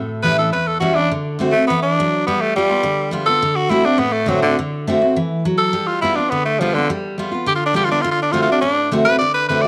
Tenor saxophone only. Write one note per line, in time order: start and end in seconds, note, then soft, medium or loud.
0.22 0.37 B4 loud
0.39 0.52 A4 medium
0.52 0.69 B4 medium
0.67 0.79 A4 medium
0.80 0.96 F#4 medium
0.95 1.10 D4 loud
1.52 1.66 A3 loud
1.67 1.82 B3 medium
1.82 2.25 D4 loud
2.26 2.43 B3 loud
2.41 2.55 A3 loud
2.56 3.12 G3 loud
3.26 3.57 A4 loud
3.56 3.72 F#4 loud
3.70 3.86 E4 loud
3.85 4.00 D4 loud
3.99 4.14 B3 loud
4.13 4.30 A3 medium
4.28 4.41 F#3 loud
4.42 4.57 D3 loud
5.58 5.88 A4 loud
5.87 6.01 F4 medium
6.01 6.17 E4 loud
6.16 6.32 D4 medium
6.30 6.45 B3 medium
6.45 6.61 A3 medium
6.59 6.76 F3 loud
6.74 6.88 D3 loud
7.48 7.55 G4 loud
7.55 7.65 F4 medium
7.66 7.75 D4 loud
7.76 7.86 G4 loud
7.85 7.91 F4 medium
7.91 8.03 D4 loud
8.01 8.11 F4 medium
8.11 8.22 F4 loud
8.22 8.33 D4 loud
8.32 8.41 F4 loud
8.42 8.51 F4 loud
8.52 8.61 D4 medium
8.61 8.90 D4 loud
9.05 9.18 B4 loud
9.18 9.33 D5 loud
9.34 9.48 B4 loud
9.48 9.63 B4 medium
9.61 9.68 D5 medium